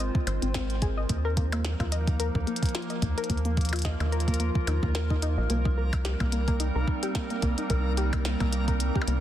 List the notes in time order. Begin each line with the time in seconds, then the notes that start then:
Already playing: G#1 G#3 A#3 C4 F4 A#4 C5
0.00 closed hi-hat
0.15 kick
0.27 G#1 C5, closed hi-hat, percussion blips
0.42 G#1 C4, closed hi-hat
0.54 C4, kick, snare, closed hi-hat
0.70 closed hi-hat
0.82 G#4, kick, closed hi-hat
0.97 D#5
1.09 D#2 F3 A#3 D#4 A#4, kick, closed hi-hat
1.25 A#4
1.37 A#3, kick, closed hi-hat
1.52 A#3, closed hi-hat, percussion blips
1.65 snare, closed hi-hat
1.80 D#2 F4, kick, closed hi-hat, percussion blips
1.92 D#5, closed hi-hat
2.08 kick, closed hi-hat
2.20 A#4, closed hi-hat
2.35 D#2 A#3, kick
2.47 A#3, closed hi-hat
2.56 closed hi-hat
2.63 kick, closed hi-hat
2.66 closed hi-hat
2.69 closed hi-hat
2.75 F4, snare, closed hi-hat
2.82 closed hi-hat
2.90 D#5, closed hi-hat
3.02 D#2, kick, closed hi-hat
3.18 A#4, closed hi-hat
3.24 closed hi-hat
3.30 D#2 A#3 F4, kick, closed hi-hat
3.37 closed hi-hat
3.45 A#3, closed hi-hat
3.57 kick, closed hi-hat
3.61 closed hi-hat
3.65 closed hi-hat
3.69 F4, closed hi-hat
3.73 closed hi-hat, percussion blips
3.76 closed hi-hat
3.79 closed hi-hat
3.82 D#5, kick, snare, closed hi-hat
4.00 D#2, closed hi-hat, percussion blips
4.12 A#4, closed hi-hat
4.20 closed hi-hat
4.28 A#3, kick, closed hi-hat
4.34 closed hi-hat
4.40 A#3, closed hi-hat
4.55 kick
4.67 D#2 D#4, closed hi-hat, percussion blips
4.83 D#2 F4, kick
4.95 A#4, snare, closed hi-hat
5.10 D#4, kick
5.22 D#4, closed hi-hat
5.38 A#1 D#5
5.50 C2 G3 A#3 C4 D#4, closed hi-hat
5.65 D#4, kick
5.78 A#4
5.93 kick, closed hi-hat, percussion blips
6.05 G4, snare, closed hi-hat
6.20 C2 A#3, kick, closed hi-hat, percussion blips
6.32 A#3, closed hi-hat
6.48 A#3, kick, closed hi-hat
6.60 D#4, closed hi-hat
6.75 C2 A#4
6.88 kick
7.03 G4, closed hi-hat
7.15 A#3, kick, snare, closed hi-hat
7.30 A#3, closed hi-hat
7.42 C2 A#3, kick, closed hi-hat
7.58 D#4, closed hi-hat
7.70 C2 A#4, kick, closed hi-hat
7.97 G4, closed hi-hat
8.13 A#3, kick, closed hi-hat, percussion blips
8.25 A#3, snare, closed hi-hat
8.40 C2 A#3, kick, closed hi-hat, percussion blips
8.53 D#4, closed hi-hat
8.68 A#4, kick, closed hi-hat
8.80 closed hi-hat
8.95 G4, kick
9.02 percussion blips
9.08 C2 A#3, closed hi-hat